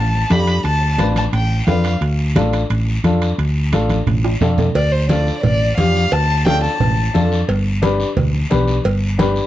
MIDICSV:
0, 0, Header, 1, 5, 480
1, 0, Start_track
1, 0, Tempo, 341880
1, 908, Time_signature, 4, 2, 24, 8
1, 13293, End_track
2, 0, Start_track
2, 0, Title_t, "Violin"
2, 0, Program_c, 0, 40
2, 0, Note_on_c, 0, 81, 88
2, 448, Note_on_c, 0, 83, 96
2, 469, Note_off_c, 0, 81, 0
2, 919, Note_off_c, 0, 83, 0
2, 931, Note_on_c, 0, 81, 103
2, 1368, Note_off_c, 0, 81, 0
2, 1646, Note_on_c, 0, 81, 88
2, 1751, Note_off_c, 0, 81, 0
2, 1889, Note_on_c, 0, 79, 80
2, 2327, Note_off_c, 0, 79, 0
2, 2353, Note_on_c, 0, 77, 79
2, 2688, Note_off_c, 0, 77, 0
2, 6679, Note_on_c, 0, 74, 90
2, 6909, Note_on_c, 0, 72, 85
2, 6930, Note_off_c, 0, 74, 0
2, 7153, Note_off_c, 0, 72, 0
2, 7159, Note_on_c, 0, 74, 83
2, 7604, Note_off_c, 0, 74, 0
2, 7635, Note_on_c, 0, 74, 94
2, 8081, Note_off_c, 0, 74, 0
2, 8106, Note_on_c, 0, 77, 99
2, 8592, Note_on_c, 0, 81, 108
2, 8613, Note_off_c, 0, 77, 0
2, 9073, Note_off_c, 0, 81, 0
2, 9092, Note_on_c, 0, 79, 106
2, 9307, Note_off_c, 0, 79, 0
2, 9321, Note_on_c, 0, 81, 94
2, 10221, Note_off_c, 0, 81, 0
2, 13293, End_track
3, 0, Start_track
3, 0, Title_t, "Upright piano"
3, 0, Program_c, 1, 0
3, 420, Note_on_c, 1, 62, 64
3, 426, Note_on_c, 1, 65, 53
3, 432, Note_on_c, 1, 67, 69
3, 760, Note_off_c, 1, 62, 0
3, 763, Note_off_c, 1, 65, 0
3, 767, Note_off_c, 1, 67, 0
3, 1379, Note_on_c, 1, 62, 75
3, 1387, Note_on_c, 1, 65, 62
3, 1393, Note_on_c, 1, 71, 77
3, 1721, Note_off_c, 1, 62, 0
3, 1725, Note_off_c, 1, 65, 0
3, 1728, Note_off_c, 1, 71, 0
3, 2346, Note_on_c, 1, 62, 67
3, 2352, Note_on_c, 1, 65, 56
3, 2360, Note_on_c, 1, 71, 73
3, 2685, Note_off_c, 1, 62, 0
3, 2688, Note_off_c, 1, 65, 0
3, 2692, Note_off_c, 1, 71, 0
3, 3311, Note_on_c, 1, 62, 86
3, 3321, Note_on_c, 1, 65, 76
3, 3326, Note_on_c, 1, 69, 85
3, 3648, Note_off_c, 1, 62, 0
3, 3653, Note_off_c, 1, 65, 0
3, 3656, Note_off_c, 1, 69, 0
3, 4273, Note_on_c, 1, 62, 81
3, 4277, Note_on_c, 1, 65, 74
3, 4280, Note_on_c, 1, 69, 81
3, 4610, Note_off_c, 1, 62, 0
3, 4612, Note_off_c, 1, 65, 0
3, 4614, Note_off_c, 1, 69, 0
3, 5236, Note_on_c, 1, 62, 80
3, 5243, Note_on_c, 1, 65, 74
3, 5245, Note_on_c, 1, 69, 94
3, 5572, Note_off_c, 1, 62, 0
3, 5575, Note_off_c, 1, 65, 0
3, 5576, Note_off_c, 1, 69, 0
3, 6188, Note_on_c, 1, 62, 75
3, 6196, Note_on_c, 1, 65, 68
3, 6197, Note_on_c, 1, 69, 85
3, 6528, Note_off_c, 1, 62, 0
3, 6532, Note_off_c, 1, 65, 0
3, 6533, Note_off_c, 1, 69, 0
3, 7151, Note_on_c, 1, 62, 72
3, 7159, Note_on_c, 1, 65, 63
3, 7168, Note_on_c, 1, 69, 74
3, 7489, Note_off_c, 1, 62, 0
3, 7494, Note_off_c, 1, 65, 0
3, 7498, Note_off_c, 1, 69, 0
3, 8110, Note_on_c, 1, 62, 62
3, 8116, Note_on_c, 1, 65, 62
3, 8124, Note_on_c, 1, 67, 72
3, 8449, Note_off_c, 1, 62, 0
3, 8452, Note_off_c, 1, 65, 0
3, 8456, Note_off_c, 1, 67, 0
3, 9075, Note_on_c, 1, 62, 68
3, 9080, Note_on_c, 1, 65, 63
3, 9083, Note_on_c, 1, 69, 84
3, 9411, Note_off_c, 1, 62, 0
3, 9413, Note_off_c, 1, 65, 0
3, 9415, Note_off_c, 1, 69, 0
3, 10022, Note_on_c, 1, 62, 81
3, 10029, Note_on_c, 1, 69, 91
3, 10030, Note_on_c, 1, 65, 73
3, 10364, Note_off_c, 1, 62, 0
3, 10367, Note_off_c, 1, 69, 0
3, 10368, Note_off_c, 1, 65, 0
3, 10975, Note_on_c, 1, 62, 88
3, 10981, Note_on_c, 1, 67, 71
3, 10989, Note_on_c, 1, 71, 92
3, 11319, Note_off_c, 1, 62, 0
3, 11323, Note_off_c, 1, 67, 0
3, 11326, Note_off_c, 1, 71, 0
3, 11934, Note_on_c, 1, 62, 75
3, 11941, Note_on_c, 1, 67, 75
3, 11947, Note_on_c, 1, 71, 92
3, 12278, Note_off_c, 1, 62, 0
3, 12282, Note_off_c, 1, 67, 0
3, 12284, Note_off_c, 1, 71, 0
3, 12889, Note_on_c, 1, 62, 85
3, 12897, Note_on_c, 1, 67, 73
3, 12903, Note_on_c, 1, 71, 94
3, 13235, Note_off_c, 1, 62, 0
3, 13239, Note_off_c, 1, 67, 0
3, 13242, Note_off_c, 1, 71, 0
3, 13293, End_track
4, 0, Start_track
4, 0, Title_t, "Fingered electric bass"
4, 0, Program_c, 2, 33
4, 0, Note_on_c, 2, 33, 89
4, 327, Note_off_c, 2, 33, 0
4, 422, Note_on_c, 2, 41, 98
4, 809, Note_off_c, 2, 41, 0
4, 899, Note_on_c, 2, 38, 82
4, 1386, Note_on_c, 2, 33, 82
4, 1407, Note_off_c, 2, 38, 0
4, 1772, Note_off_c, 2, 33, 0
4, 1862, Note_on_c, 2, 33, 88
4, 2250, Note_off_c, 2, 33, 0
4, 2341, Note_on_c, 2, 41, 90
4, 2730, Note_off_c, 2, 41, 0
4, 2823, Note_on_c, 2, 38, 92
4, 3308, Note_on_c, 2, 33, 82
4, 3329, Note_off_c, 2, 38, 0
4, 3694, Note_off_c, 2, 33, 0
4, 3790, Note_on_c, 2, 33, 89
4, 4176, Note_off_c, 2, 33, 0
4, 4270, Note_on_c, 2, 41, 90
4, 4656, Note_off_c, 2, 41, 0
4, 4749, Note_on_c, 2, 38, 89
4, 5231, Note_on_c, 2, 33, 82
4, 5252, Note_off_c, 2, 38, 0
4, 5617, Note_off_c, 2, 33, 0
4, 5713, Note_on_c, 2, 33, 100
4, 6098, Note_off_c, 2, 33, 0
4, 6191, Note_on_c, 2, 41, 89
4, 6577, Note_off_c, 2, 41, 0
4, 6669, Note_on_c, 2, 38, 98
4, 7440, Note_off_c, 2, 38, 0
4, 7630, Note_on_c, 2, 33, 88
4, 8016, Note_off_c, 2, 33, 0
4, 8107, Note_on_c, 2, 41, 87
4, 8494, Note_off_c, 2, 41, 0
4, 8590, Note_on_c, 2, 38, 94
4, 9359, Note_off_c, 2, 38, 0
4, 9552, Note_on_c, 2, 33, 93
4, 9937, Note_off_c, 2, 33, 0
4, 10029, Note_on_c, 2, 41, 81
4, 10414, Note_off_c, 2, 41, 0
4, 10506, Note_on_c, 2, 31, 92
4, 11276, Note_off_c, 2, 31, 0
4, 11467, Note_on_c, 2, 38, 94
4, 11852, Note_off_c, 2, 38, 0
4, 11946, Note_on_c, 2, 35, 89
4, 12331, Note_off_c, 2, 35, 0
4, 12423, Note_on_c, 2, 31, 93
4, 13193, Note_off_c, 2, 31, 0
4, 13293, End_track
5, 0, Start_track
5, 0, Title_t, "Drums"
5, 200, Note_on_c, 9, 63, 35
5, 341, Note_off_c, 9, 63, 0
5, 424, Note_on_c, 9, 73, 74
5, 427, Note_on_c, 9, 63, 72
5, 429, Note_on_c, 9, 65, 67
5, 429, Note_on_c, 9, 66, 65
5, 565, Note_off_c, 9, 73, 0
5, 567, Note_off_c, 9, 63, 0
5, 569, Note_off_c, 9, 65, 0
5, 569, Note_off_c, 9, 66, 0
5, 661, Note_on_c, 9, 73, 65
5, 666, Note_on_c, 9, 65, 67
5, 802, Note_off_c, 9, 73, 0
5, 807, Note_off_c, 9, 65, 0
5, 906, Note_on_c, 9, 63, 32
5, 908, Note_on_c, 9, 74, 63
5, 910, Note_on_c, 9, 65, 65
5, 1046, Note_off_c, 9, 63, 0
5, 1048, Note_off_c, 9, 74, 0
5, 1050, Note_off_c, 9, 65, 0
5, 1382, Note_on_c, 9, 63, 82
5, 1386, Note_on_c, 9, 73, 70
5, 1393, Note_on_c, 9, 65, 73
5, 1522, Note_off_c, 9, 63, 0
5, 1526, Note_off_c, 9, 73, 0
5, 1533, Note_off_c, 9, 65, 0
5, 1616, Note_on_c, 9, 63, 57
5, 1629, Note_on_c, 9, 73, 71
5, 1631, Note_on_c, 9, 65, 64
5, 1757, Note_off_c, 9, 63, 0
5, 1769, Note_off_c, 9, 73, 0
5, 1772, Note_off_c, 9, 65, 0
5, 1869, Note_on_c, 9, 65, 71
5, 1869, Note_on_c, 9, 74, 60
5, 2009, Note_off_c, 9, 74, 0
5, 2010, Note_off_c, 9, 65, 0
5, 2101, Note_on_c, 9, 63, 34
5, 2242, Note_off_c, 9, 63, 0
5, 2344, Note_on_c, 9, 73, 67
5, 2349, Note_on_c, 9, 63, 76
5, 2353, Note_on_c, 9, 65, 59
5, 2353, Note_on_c, 9, 66, 70
5, 2485, Note_off_c, 9, 73, 0
5, 2490, Note_off_c, 9, 63, 0
5, 2494, Note_off_c, 9, 65, 0
5, 2494, Note_off_c, 9, 66, 0
5, 2585, Note_on_c, 9, 73, 71
5, 2593, Note_on_c, 9, 65, 66
5, 2725, Note_off_c, 9, 73, 0
5, 2733, Note_off_c, 9, 65, 0
5, 2826, Note_on_c, 9, 63, 32
5, 2827, Note_on_c, 9, 74, 67
5, 2834, Note_on_c, 9, 65, 70
5, 2967, Note_off_c, 9, 63, 0
5, 2968, Note_off_c, 9, 74, 0
5, 2974, Note_off_c, 9, 65, 0
5, 3306, Note_on_c, 9, 73, 71
5, 3311, Note_on_c, 9, 63, 92
5, 3317, Note_on_c, 9, 65, 77
5, 3447, Note_off_c, 9, 73, 0
5, 3452, Note_off_c, 9, 63, 0
5, 3457, Note_off_c, 9, 65, 0
5, 3548, Note_on_c, 9, 73, 68
5, 3559, Note_on_c, 9, 65, 63
5, 3689, Note_off_c, 9, 73, 0
5, 3699, Note_off_c, 9, 65, 0
5, 3790, Note_on_c, 9, 74, 62
5, 3797, Note_on_c, 9, 65, 70
5, 3931, Note_off_c, 9, 74, 0
5, 3938, Note_off_c, 9, 65, 0
5, 4031, Note_on_c, 9, 63, 35
5, 4172, Note_off_c, 9, 63, 0
5, 4266, Note_on_c, 9, 63, 75
5, 4271, Note_on_c, 9, 73, 62
5, 4273, Note_on_c, 9, 65, 62
5, 4407, Note_off_c, 9, 63, 0
5, 4411, Note_off_c, 9, 73, 0
5, 4414, Note_off_c, 9, 65, 0
5, 4514, Note_on_c, 9, 73, 71
5, 4518, Note_on_c, 9, 65, 67
5, 4655, Note_off_c, 9, 73, 0
5, 4658, Note_off_c, 9, 65, 0
5, 4755, Note_on_c, 9, 74, 62
5, 4756, Note_on_c, 9, 63, 31
5, 4759, Note_on_c, 9, 65, 68
5, 4896, Note_off_c, 9, 74, 0
5, 4897, Note_off_c, 9, 63, 0
5, 4900, Note_off_c, 9, 65, 0
5, 5231, Note_on_c, 9, 63, 70
5, 5232, Note_on_c, 9, 73, 68
5, 5234, Note_on_c, 9, 65, 75
5, 5371, Note_off_c, 9, 63, 0
5, 5373, Note_off_c, 9, 73, 0
5, 5374, Note_off_c, 9, 65, 0
5, 5468, Note_on_c, 9, 63, 70
5, 5468, Note_on_c, 9, 73, 66
5, 5477, Note_on_c, 9, 65, 60
5, 5608, Note_off_c, 9, 63, 0
5, 5609, Note_off_c, 9, 73, 0
5, 5617, Note_off_c, 9, 65, 0
5, 5710, Note_on_c, 9, 64, 71
5, 5713, Note_on_c, 9, 74, 66
5, 5719, Note_on_c, 9, 65, 59
5, 5850, Note_off_c, 9, 64, 0
5, 5853, Note_off_c, 9, 74, 0
5, 5859, Note_off_c, 9, 65, 0
5, 5958, Note_on_c, 9, 65, 70
5, 6098, Note_off_c, 9, 65, 0
5, 6189, Note_on_c, 9, 73, 64
5, 6190, Note_on_c, 9, 64, 65
5, 6200, Note_on_c, 9, 66, 95
5, 6330, Note_off_c, 9, 64, 0
5, 6330, Note_off_c, 9, 73, 0
5, 6341, Note_off_c, 9, 66, 0
5, 6428, Note_on_c, 9, 73, 65
5, 6432, Note_on_c, 9, 64, 85
5, 6437, Note_on_c, 9, 66, 87
5, 6568, Note_off_c, 9, 73, 0
5, 6572, Note_off_c, 9, 64, 0
5, 6577, Note_off_c, 9, 66, 0
5, 6668, Note_on_c, 9, 74, 73
5, 6669, Note_on_c, 9, 63, 34
5, 6673, Note_on_c, 9, 56, 107
5, 6809, Note_off_c, 9, 63, 0
5, 6809, Note_off_c, 9, 74, 0
5, 6814, Note_off_c, 9, 56, 0
5, 7150, Note_on_c, 9, 63, 85
5, 7154, Note_on_c, 9, 56, 74
5, 7154, Note_on_c, 9, 73, 69
5, 7291, Note_off_c, 9, 63, 0
5, 7294, Note_off_c, 9, 56, 0
5, 7295, Note_off_c, 9, 73, 0
5, 7395, Note_on_c, 9, 73, 65
5, 7536, Note_off_c, 9, 73, 0
5, 7629, Note_on_c, 9, 56, 79
5, 7636, Note_on_c, 9, 74, 65
5, 7642, Note_on_c, 9, 64, 75
5, 7769, Note_off_c, 9, 56, 0
5, 7776, Note_off_c, 9, 74, 0
5, 7782, Note_off_c, 9, 64, 0
5, 7887, Note_on_c, 9, 63, 35
5, 8028, Note_off_c, 9, 63, 0
5, 8110, Note_on_c, 9, 56, 70
5, 8115, Note_on_c, 9, 73, 72
5, 8123, Note_on_c, 9, 63, 74
5, 8251, Note_off_c, 9, 56, 0
5, 8255, Note_off_c, 9, 73, 0
5, 8264, Note_off_c, 9, 63, 0
5, 8359, Note_on_c, 9, 73, 70
5, 8499, Note_off_c, 9, 73, 0
5, 8592, Note_on_c, 9, 56, 103
5, 8602, Note_on_c, 9, 74, 72
5, 8608, Note_on_c, 9, 63, 30
5, 8732, Note_off_c, 9, 56, 0
5, 8742, Note_off_c, 9, 74, 0
5, 8748, Note_off_c, 9, 63, 0
5, 9074, Note_on_c, 9, 63, 99
5, 9076, Note_on_c, 9, 56, 70
5, 9078, Note_on_c, 9, 73, 64
5, 9215, Note_off_c, 9, 63, 0
5, 9217, Note_off_c, 9, 56, 0
5, 9218, Note_off_c, 9, 73, 0
5, 9318, Note_on_c, 9, 73, 63
5, 9459, Note_off_c, 9, 73, 0
5, 9550, Note_on_c, 9, 64, 79
5, 9556, Note_on_c, 9, 56, 81
5, 9562, Note_on_c, 9, 74, 67
5, 9691, Note_off_c, 9, 64, 0
5, 9697, Note_off_c, 9, 56, 0
5, 9703, Note_off_c, 9, 74, 0
5, 9796, Note_on_c, 9, 63, 35
5, 9936, Note_off_c, 9, 63, 0
5, 10030, Note_on_c, 9, 73, 71
5, 10033, Note_on_c, 9, 63, 75
5, 10038, Note_on_c, 9, 56, 61
5, 10038, Note_on_c, 9, 66, 64
5, 10171, Note_off_c, 9, 73, 0
5, 10173, Note_off_c, 9, 63, 0
5, 10178, Note_off_c, 9, 56, 0
5, 10178, Note_off_c, 9, 66, 0
5, 10277, Note_on_c, 9, 73, 74
5, 10417, Note_off_c, 9, 73, 0
5, 10510, Note_on_c, 9, 63, 29
5, 10511, Note_on_c, 9, 74, 68
5, 10512, Note_on_c, 9, 56, 106
5, 10650, Note_off_c, 9, 63, 0
5, 10652, Note_off_c, 9, 74, 0
5, 10653, Note_off_c, 9, 56, 0
5, 10987, Note_on_c, 9, 56, 73
5, 10990, Note_on_c, 9, 63, 84
5, 10990, Note_on_c, 9, 73, 72
5, 11127, Note_off_c, 9, 56, 0
5, 11131, Note_off_c, 9, 63, 0
5, 11131, Note_off_c, 9, 73, 0
5, 11230, Note_on_c, 9, 73, 71
5, 11370, Note_off_c, 9, 73, 0
5, 11466, Note_on_c, 9, 64, 76
5, 11468, Note_on_c, 9, 56, 90
5, 11469, Note_on_c, 9, 74, 65
5, 11607, Note_off_c, 9, 64, 0
5, 11608, Note_off_c, 9, 56, 0
5, 11610, Note_off_c, 9, 74, 0
5, 11708, Note_on_c, 9, 63, 37
5, 11849, Note_off_c, 9, 63, 0
5, 11942, Note_on_c, 9, 73, 72
5, 11945, Note_on_c, 9, 56, 64
5, 11950, Note_on_c, 9, 63, 79
5, 12082, Note_off_c, 9, 73, 0
5, 12085, Note_off_c, 9, 56, 0
5, 12091, Note_off_c, 9, 63, 0
5, 12181, Note_on_c, 9, 73, 70
5, 12322, Note_off_c, 9, 73, 0
5, 12416, Note_on_c, 9, 74, 68
5, 12427, Note_on_c, 9, 56, 112
5, 12433, Note_on_c, 9, 63, 32
5, 12557, Note_off_c, 9, 74, 0
5, 12567, Note_off_c, 9, 56, 0
5, 12573, Note_off_c, 9, 63, 0
5, 12903, Note_on_c, 9, 63, 87
5, 12906, Note_on_c, 9, 73, 72
5, 12907, Note_on_c, 9, 56, 74
5, 13043, Note_off_c, 9, 63, 0
5, 13046, Note_off_c, 9, 73, 0
5, 13047, Note_off_c, 9, 56, 0
5, 13138, Note_on_c, 9, 73, 72
5, 13278, Note_off_c, 9, 73, 0
5, 13293, End_track
0, 0, End_of_file